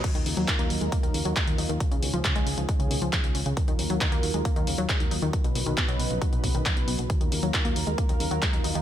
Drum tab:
CC |x---------------|----------------|----------------|----------------|
HH |xxoxxxoxxxoxxxox|xxoxxxoxxxoxxxox|xxoxxxoxxxoxxxox|xxoxxxoxxxoxxxox|
CP |----x-------x---|----x-------x---|----x-------x---|----x-------x---|
BD |o---o---o---o---|o---o---o---o---|o---o---o---o---|o---o---o-o-o---|

CC |----------------|
HH |xxoxxxoxxxoxxxox|
CP |----x-------x---|
BD |o---o---o---o---|